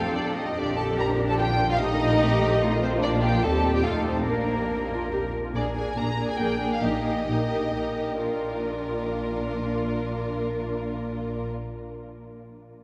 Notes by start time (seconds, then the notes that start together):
Already playing: F2 C4 F4 A4 F5
0.05 F3
0.13 C3 D4 D5
0.26 F3
0.34 A3 D#4 D#5
0.47 F3
0.55 A#1 D3 D4 G4 D5
0.69 F3
0.77 D3 A4 A5
0.90 F3
0.97 D3 A#4 A#5
1.10 F3
1.20 D3
1.29 F3 A4 A5
1.39 D3 F4 G4 G5
1.51 F3
1.61 D3
1.70 F3 F4 F5
1.80 C3 A3 D#4 D#5
1.92 D#3
2.03 F3
2.13 D#3
2.21 C3 G4
2.33 D#3
2.43 F3
2.54 D#3
2.63 C3 F4
2.74 D#3
2.82 F3 C4 C5
2.95 D#3
3.01 A#1 F3 D4 D5
3.05 A#3
3.22 G4 G5
3.43 D#2 G3 C4 G4 A4 A5
3.74 G4 G5
3.84 F2 A3 D#4 F4 A4 F5
4.06 C4 C5
4.27 A#1 A#3 D4 A#4
4.70 A#3
4.91 F4
5.12 G4
5.45 F4
5.55 A#1 A#2 A#3 D4 G#4 A#4 D5
5.76 A#3 D4 G#4 A#4 G#5
5.96 A#1 A#2 A#3 D4 G#4 A#4 A#5
6.17 A#3 D4 G#4 A#4
6.30 G#5
6.38 A#1 A#2 A#3 D4 G#4 A#4 G5
6.60 A#3 D4 G#4 A#4
6.72 F5
6.80 A#1 A#2 A#3 D#4 G4 A#4 D#5
7.03 A#3 D#4 G4 A#4
7.25 A#1 A#2 A#3 D#4 G4 A#4
7.48 A#3 D#4 G4 A#4
7.72 A#1 A#2 A#3 D#4 G4 A#4
7.95 A#3 D#4 G4 A#4
8.20 A#1 A#2 A#3 D4 F4 A#4